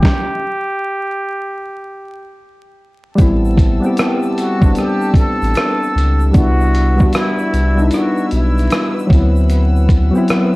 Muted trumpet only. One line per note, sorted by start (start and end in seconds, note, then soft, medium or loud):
0.00 2.40 G4 loud
4.39 4.80 F#4 medium
4.78 5.19 G4 loud
5.18 6.35 A4 loud
6.36 7.16 F#4 loud
7.15 7.95 E4 medium
7.94 8.32 F#4 medium
8.33 9.07 E4 medium